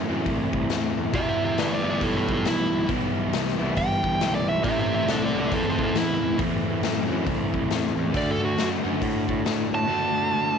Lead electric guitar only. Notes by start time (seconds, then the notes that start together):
1.15 G4 E5
1.29 G4 E5
1.44 G4 E5
1.59 B4 D5
1.73 B4 D5
1.90 B4 D5
2.03 E4 A4
2.17 E4 A4
2.32 E4 A4
2.47 E4
3.78 G5
4.35 D5
4.49 E5
4.64 G4 E5
4.79 G4 E5
4.94 G4 E5
5.10 A4 D5
5.25 A4 D5
5.40 A4 D5
5.54 C4 A4
5.69 C4 A4
5.83 C4 A4
5.97 E4
8.17 D5
8.31 A4
8.45 F#4
9.75 A5